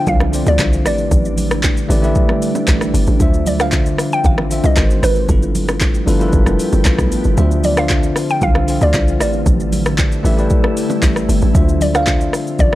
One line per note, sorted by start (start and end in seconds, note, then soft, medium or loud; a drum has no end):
0.00 0.32 D3 medium
0.00 4.73 D3 medium
0.00 0.84 F3 medium
0.00 0.84 C4 medium
0.00 0.33 D4 medium
0.00 4.73 D4 medium
0.00 0.33 F4 medium
0.00 0.34 C5 medium
0.00 0.87 E5 loud
0.00 0.16 F5 medium
0.07 0.43 C2 loud
0.07 0.49 F5 loud
0.07 kick loud
0.07 low conga medium
0.07 shaker medium
0.20 cross-stick medium
0.20 low bongo medium
0.32 0.85 D3 medium
0.32 0.85 D4 medium
0.32 0.85 F4 medium
0.32 0.86 C5 medium
0.32 0.86 D5 medium
0.32 open hi-hat medium
0.32 shaker medium
0.46 0.58 D2 medium
0.46 0.85 D5 medium
0.46 low bongo medium
0.46 shaker medium
0.59 0.87 C2 loud
0.59 kick loud
0.59 clap loud
0.59 high bongo medium
0.59 shaker medium
0.73 shaker medium
0.84 1.09 A1 loud
0.84 3.18 G3 medium
0.84 1.68 A3 medium
0.84 3.18 A3 medium
0.84 1.69 E4 medium
0.84 1.69 G4 medium
0.84 1.70 B4 medium
0.84 1.35 D5 medium
0.84 1.70 D5 medium
0.84 cross-stick medium
0.84 open hi-hat medium
0.84 shaker loud
0.98 shaker soft
1.11 1.86 A1 loud
1.11 kick loud
1.11 low conga medium
1.11 shaker medium
1.25 shaker soft
1.38 open hi-hat medium
1.38 low conga medium
1.38 shaker loud
1.51 cross-stick loud
1.51 shaker medium
1.63 kick loud
1.63 clap loud
1.63 high bongo medium
1.63 shaker medium
1.77 shaker medium
1.88 2.13 A1 loud
1.88 2.00 A3 loud
1.88 2.00 E4 medium
1.88 2.01 G4 medium
1.88 2.01 B4 medium
1.88 2.02 D5 loud
1.88 open hi-hat medium
1.88 shaker medium
2.02 2.86 A3 loud
2.02 2.86 E4 medium
2.02 2.87 G4 medium
2.02 2.87 B4 medium
2.02 2.88 E5 loud
2.02 shaker soft
2.15 kick loud
2.15 low conga medium
2.15 shaker medium
2.29 cross-stick medium
2.29 low bongo medium
2.42 open hi-hat medium
2.42 shaker medium
2.55 low bongo medium
2.55 shaker medium
2.67 2.92 A1 loud
2.67 kick loud
2.67 clap loud
2.67 high bongo medium
2.67 shaker medium
2.81 cross-stick medium
2.81 shaker medium
2.94 3.06 G1 loud
2.94 open hi-hat medium
2.94 shaker loud
3.07 3.22 A1 medium
3.07 shaker soft
3.19 3.94 D2 loud
3.19 3.51 D3 medium
3.19 4.75 F3 medium
3.19 4.75 C4 medium
3.19 3.51 D4 medium
3.19 3.52 F4 medium
3.19 3.52 C5 medium
3.19 3.53 E5 loud
3.19 kick loud
3.19 low conga medium
3.19 shaker medium
3.34 shaker soft
3.46 3.53 D5 medium
3.46 open hi-hat medium
3.46 low conga medium
3.46 shaker loud
3.59 4.32 D3 medium
3.59 4.32 D4 medium
3.59 4.33 F4 medium
3.59 4.33 C5 medium
3.59 4.14 F5 loud
3.59 4.34 F5 medium
3.59 cross-stick loud
3.59 shaker medium
3.72 kick loud
3.72 clap loud
3.72 high bongo medium
3.72 shaker medium
3.86 shaker medium
3.98 cross-stick medium
3.98 open hi-hat soft
3.98 shaker medium
4.12 4.25 G5 loud
4.12 shaker soft
4.24 4.61 A1 medium
4.24 4.62 F5 loud
4.24 kick loud
4.24 low conga medium
4.24 shaker medium
4.38 cross-stick medium
4.38 low bongo medium
4.49 4.76 D3 medium
4.49 4.76 D4 medium
4.49 4.77 F4 medium
4.49 4.77 C5 medium
4.49 4.78 E5 medium
4.49 open hi-hat medium
4.49 shaker medium
4.64 4.76 C2 medium
4.64 5.05 D#5 loud
4.64 low bongo medium
4.64 shaker medium
4.75 5.00 G#1 loud
4.75 5.18 G#3 medium
4.75 5.19 D#4 medium
4.75 5.19 F#4 medium
4.75 5.19 A#4 medium
4.75 4.84 B4 medium
4.75 kick loud
4.75 clap medium
4.75 high bongo medium
4.75 shaker medium
4.85 5.23 C5 medium
4.91 shaker medium
5.03 5.26 G#1 medium
5.03 5.52 B4 medium
5.03 cross-stick medium
5.03 open hi-hat medium
5.03 shaker loud
5.16 shaker soft
5.28 6.03 G1 loud
5.28 7.35 F3 medium
5.28 5.91 G3 medium
5.28 7.35 A3 medium
5.28 7.35 B3 medium
5.28 5.92 D4 medium
5.28 5.92 E4 medium
5.28 5.92 F4 medium
5.28 7.35 G4 medium
5.28 5.92 A4 medium
5.28 5.93 B4 medium
5.28 kick loud
5.28 low conga medium
5.28 shaker medium
5.43 shaker soft
5.55 open hi-hat medium
5.55 low conga medium
5.55 shaker medium
5.68 cross-stick loud
5.68 low bongo medium
5.68 shaker medium
5.81 kick loud
5.81 clap medium
5.81 high bongo medium
5.81 low bongo soft
5.81 shaker medium
5.95 shaker medium
6.06 6.31 G1 loud
6.06 6.17 G3 medium
6.06 6.18 D4 medium
6.06 6.18 E4 medium
6.06 6.18 F4 medium
6.06 6.19 A4 medium
6.06 6.19 B4 loud
6.06 open hi-hat medium
6.06 shaker medium
6.19 7.03 G3 loud
6.19 7.04 D4 medium
6.19 7.04 E4 medium
6.19 7.04 F4 medium
6.19 7.05 A4 medium
6.19 6.28 A#4 medium
6.19 high bongo medium
6.19 shaker soft
6.29 7.08 B4 loud
6.29 shaker medium
6.33 6.45 G1 medium
6.33 kick loud
6.33 low conga medium
6.46 6.58 F1 medium
6.46 cross-stick medium
6.46 low bongo medium
6.46 shaker medium
6.59 open hi-hat medium
6.59 shaker medium
6.72 6.84 G1 medium
6.72 low bongo medium
6.72 shaker medium
6.85 6.98 A1 loud
6.85 kick loud
6.85 clap medium
6.85 high bongo medium
6.85 shaker medium
6.98 7.10 B1 medium
6.98 kick medium
6.98 cross-stick medium
6.98 shaker medium
7.12 open hi-hat medium
7.12 shaker loud
7.24 7.36 G1 medium
7.24 shaker soft
7.36 8.12 D2 loud
7.36 7.68 D3 medium
7.36 11.51 D3 medium
7.36 9.18 F3 medium
7.36 9.18 C4 medium
7.36 7.69 D4 medium
7.36 9.18 F4 medium
7.36 7.69 F4 medium
7.36 7.70 C5 medium
7.36 7.70 E5 loud
7.36 low conga medium
7.36 shaker medium
7.51 shaker soft
7.64 7.78 D5 medium
7.64 open hi-hat medium
7.64 low conga medium
7.64 shaker medium
7.76 8.49 D3 medium
7.76 8.50 D4 medium
7.76 8.50 F4 medium
7.76 8.51 C5 medium
7.76 8.51 D5 medium
7.76 8.26 F5 loud
7.76 cross-stick loud
7.76 shaker medium
7.89 kick loud
7.89 clap medium
7.89 high bongo medium
7.89 shaker medium
8.03 shaker medium
8.16 cross-stick medium
8.16 open hi-hat medium
8.16 shaker medium
8.30 8.43 G5 loud
8.30 shaker soft
8.41 8.78 C2 loud
8.41 8.83 F5 loud
8.41 kick loud
8.41 low conga medium
8.41 shaker medium
8.55 cross-stick medium
8.55 low bongo medium
8.67 9.19 D3 medium
8.67 9.20 D4 medium
8.67 9.20 F4 medium
8.67 9.21 C5 medium
8.67 9.21 F5 medium
8.67 open hi-hat medium
8.67 shaker medium
8.81 8.93 D2 loud
8.81 9.20 D5 loud
8.81 low bongo medium
8.81 shaker medium
8.93 9.22 C2 loud
8.93 kick loud
8.93 clap medium
8.93 high bongo medium
8.93 shaker medium
9.08 shaker medium
9.19 9.44 A1 loud
9.19 11.53 G3 medium
9.19 10.03 A3 medium
9.19 11.53 A3 medium
9.19 10.04 E4 medium
9.19 11.52 E4 medium
9.19 10.04 G4 medium
9.19 10.04 B4 medium
9.19 9.69 D5 medium
9.19 10.05 D5 medium
9.19 cross-stick medium
9.19 open hi-hat medium
9.19 shaker loud
9.33 shaker soft
9.46 10.21 A1 loud
9.46 kick loud
9.46 low conga medium
9.46 shaker medium
9.60 shaker soft
9.72 open hi-hat medium
9.72 low conga medium
9.72 shaker loud
9.86 cross-stick loud
9.86 shaker medium
9.98 kick loud
9.98 clap loud
9.98 high bongo medium
9.98 shaker medium
10.12 shaker medium
10.23 10.48 A1 loud
10.23 10.35 A3 loud
10.23 10.35 E4 medium
10.23 10.35 G4 medium
10.23 10.36 B4 medium
10.23 10.36 E5 loud
10.23 open hi-hat medium
10.23 shaker medium
10.37 11.21 A3 loud
10.37 11.21 E4 medium
10.37 11.21 G4 medium
10.37 11.22 B4 medium
10.37 11.22 D5 loud
10.37 shaker soft
10.50 kick loud
10.50 low conga medium
10.50 shaker medium
10.64 cross-stick medium
10.64 low bongo medium
10.77 open hi-hat medium
10.77 shaker medium
10.90 low bongo medium
10.90 shaker medium
11.02 11.26 A1 loud
11.02 kick loud
11.02 clap medium
11.02 high bongo medium
11.02 shaker medium
11.16 cross-stick medium
11.16 shaker medium
11.29 11.41 G1 loud
11.29 open hi-hat medium
11.29 shaker loud
11.42 11.54 A1 medium
11.42 shaker soft
11.54 12.29 D2 loud
11.54 11.86 D3 medium
11.54 12.75 D3 medium
11.54 12.75 F3 medium
11.54 12.75 C4 medium
11.54 11.86 D4 medium
11.54 12.75 F4 medium
11.54 11.87 F4 medium
11.54 11.87 C5 medium
11.54 11.87 E5 loud
11.54 kick loud
11.54 low conga medium
11.54 shaker medium
11.69 shaker soft
11.81 11.95 D5 loud
11.81 open hi-hat medium
11.81 low conga medium
11.81 shaker loud
11.93 12.67 D3 medium
11.93 12.67 D4 medium
11.93 12.68 F4 medium
11.93 12.68 C5 medium
11.93 12.02 D5 medium
11.93 12.62 F5 loud
11.93 cross-stick loud
11.93 shaker medium
12.03 12.71 F5 medium
12.03 shaker medium
12.07 kick loud
12.07 clap loud
12.07 high bongo medium
12.21 shaker medium
12.33 cross-stick medium
12.33 open hi-hat medium
12.33 shaker medium
12.47 shaker soft
12.59 12.75 A1 medium
12.59 12.75 D5 loud
12.59 kick loud
12.59 low conga medium
12.59 shaker medium